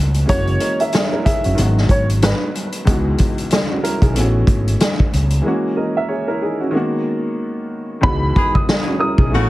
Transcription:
Already playing: fretless electric bass C#2, grand piano E3 A3 B3 C#4 F#4
0.14 closed hi-hat
0.26 grand piano E3 G#3 A#3, upright piano C#5, kick, closed hi-hat
0.30 grand piano C#4 F#4
0.47 closed hi-hat
0.60 grand piano A#4 D#5, closed hi-hat
0.80 grand piano A#4 E5, upright piano E5, closed hi-hat
0.92 grand piano G#4 C#5, snare, closed hi-hat
1.12 grand piano E4 A#4
1.25 grand piano D#4 G#4, upright piano E5, kick, closed hi-hat
1.44 fretless electric bass F#1, grand piano C#4 F#4, closed hi-hat
1.55 fretless electric bass G#1, grand piano D#3 F#3 G#3, closed hi-hat
1.60 grand piano B3 F#4
1.78 snare
1.89 fretless electric bass G#1, upright piano C#5, kick, closed hi-hat
2.10 closed hi-hat
2.22 upright piano B4, snare, closed hi-hat
2.55 closed hi-hat
2.72 closed hi-hat
2.85 grand piano C#2 E3 G#3 B3, fretless electric bass C#2, kick, closed hi-hat
2.90 grand piano D#4 F#4
3.18 kick, closed hi-hat
3.38 closed hi-hat
3.50 snare, closed hi-hat
3.71 grand piano C#4 F#4
3.84 grand piano E4 A#4, closed hi-hat
4.02 fretless electric bass B1, grand piano D#4 G#4, kick, closed hi-hat
4.14 fretless electric bass A1, grand piano E3 A3 B3, closed hi-hat
4.18 grand piano C#4 F#4
4.47 kick, closed hi-hat
4.68 closed hi-hat
4.80 snare, closed hi-hat
5.00 kick
5.13 fretless electric bass C#2, closed hi-hat
5.30 closed hi-hat
5.42 grand piano E3 G#3 A#3
5.46 grand piano C#4 F#4
5.76 grand piano A#4 D#5
5.97 grand piano A#4 E5
6.08 grand piano G#4 C#5
6.28 grand piano E4 A#4
6.42 grand piano D#4 G#4
6.61 grand piano C#4 F#4
6.71 grand piano D#3 G#3 A#3
6.76 grand piano B3 F#4
8.01 grand piano C#2 E3 G#3 B3, fretless electric bass C#2, upright piano B5, kick
8.06 grand piano D#4 F#4
8.36 horn section E3 D#4 G#4, kick
8.55 upright piano D#6, kick
8.69 snare
8.87 grand piano C#4 F#4
8.99 grand piano E4 A#4, upright piano D#6
9.18 fretless electric bass B1, grand piano D#4 G#4, kick
9.30 fretless electric bass A1, horn section C#3 A3 F#4, grand piano E3 A3 B3
9.35 grand piano C#4 F#4

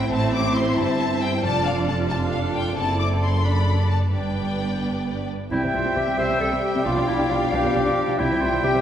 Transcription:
Already playing: double bass section A1, cello section A2, viola section C4 E4, violin section C5 E5 G5
0.11 double bass section A1, cello section A2, viola section E4, violin section C5 E5 A5
0.35 violin section D6
0.56 violin section C6
0.78 double bass section G1, cello section G2, violin section A5
1.22 violin section G5
1.43 double bass section F1, cello section F2, viola section D4 F4, violin section A4 D5 A5
1.66 violin section F5
1.88 violin section A5
2.09 viola section D4, violin section A4 F5 A5
2.32 violin section F5
2.55 violin section G5
2.76 double bass section F#1, cello section F#2, viola section C4 E4, violin section A4 D5 A5
2.99 violin section D6
3.22 violin section C6
3.44 viola section D4, violin section D5 B5
3.90 violin section A5
4.13 double bass section G1, cello section G2, viola section B3 D4, violin section B4 D5 G5
5.51 double bass section C2, cello section C3, bassoon G3, french horn section G3 C4, viola section C4, clarinet E4, flute E5, violin section E5 G5, oboe G5
5.63 cello section C3, viola section C4
5.73 double bass section C2, cello section C3, viola section C4, clarinet F4
5.84 cello section C3, viola section C4
5.95 double bass section C2, cello section C3, viola section C4, clarinet G4
6.06 cello section C3, viola section C4
6.17 double bass section C2, cello section C3, viola section C4, clarinet C5, oboe E5
6.29 cello section C3, viola section C4
6.40 double bass section C2, cello section C3, viola section C4, clarinet A4
6.51 cello section C3, viola section C4
6.63 clarinet G4
6.74 cello section C3, viola section C4
6.84 double bass section B1, cello section B2, french horn section F3 D4, viola section D4, clarinet F4, oboe D5, violin section F5, flute F5
6.95 cello section B2, viola section D4
7.08 double bass section B1, cello section B2, viola section D4, clarinet E4
7.18 cello section B2, viola section D4
7.30 double bass section B1, cello section B2, viola section D4, clarinet F4
7.41 cello section B2, viola section D4
7.51 double bass section B1, cello section B2, viola section D4, clarinet G4, oboe D5
7.63 cello section B2, viola section D4
7.75 double bass section B1, cello section B2, viola section D4
7.86 cello section B2, viola section D4
8.07 cello section B2, viola section D4
8.19 double bass section C2, cello section C3, french horn section G3 C4, bassoon G3, viola section C4, clarinet E4, flute E5, violin section E5 G5, oboe G5
8.30 cello section C3, viola section C4
8.41 double bass section C2, cello section C3, viola section C4, clarinet F4
8.52 cello section C3, viola section C4
8.63 double bass section C2, cello section C3, viola section C4, clarinet G4
8.74 cello section C3, viola section C4

